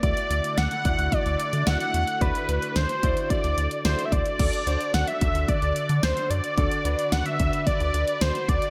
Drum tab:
CC |----------------|----------------|x---------------|----------------|
HH |xxxxxxxxxxxxxxxx|xxxxxxxxxxxxxxxx|xxxxxxxxxxxxxxxx|xxxxxxxxxxxxxxxx|
SD |----o-------o---|----o-------o---|----o-------o---|----o-------o---|
BD |o-----o-o-------|o-----o-o-----o-|o-----o-o-------|o-----o-o-----o-|